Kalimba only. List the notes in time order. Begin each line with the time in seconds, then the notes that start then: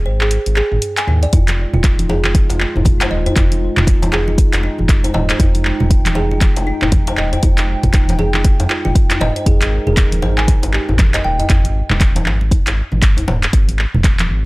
0.06 C5
0.21 G#4
0.57 G#4
0.98 G#5
1.08 D#4
1.23 D5
1.33 F4
1.74 F4
2.09 G#4
2.25 F4
2.60 D#4
3.01 C5
3.11 D#5
3.26 C5
3.36 F4
3.77 F4
4.13 G#4
4.28 F4
4.63 D#4
5.04 C5
5.14 D#5
5.29 C5
5.40 F4
5.80 F4
6.16 G#4
6.31 F4
6.67 D#4
7.08 C5
7.18 D#5
7.33 C5
7.43 F4
7.83 F4
8.19 G#4
8.34 F4
8.70 F4
8.85 F4
9.11 F4
9.21 D#5
9.36 C5
9.46 G#4
9.87 G#4
10.23 C5
10.38 G#5
10.73 G4
11.14 D#5
11.24 G5
11.39 D#5